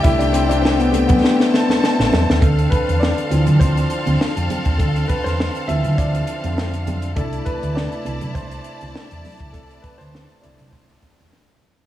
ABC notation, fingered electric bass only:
X:1
M:4/4
L:1/16
Q:"Swing 16ths" 1/4=101
K:Ddor
V:1 name="Fingered electric bass" clef=bass
C,,6- C,, z6 A,,, E,, _E,, | D,,2 z E,,2 z D,, D, D,,2 z D,, z F,, z _E,, | D,,2 z E,,2 z D,, D, D,,2 z F,,4- F,, | C,,2 z D,,2 z C,, C, C,,2 z C,, z E,, z _D,, |
C,,2 z D,,2 z C,, C, C,,2 z E,, z4 |]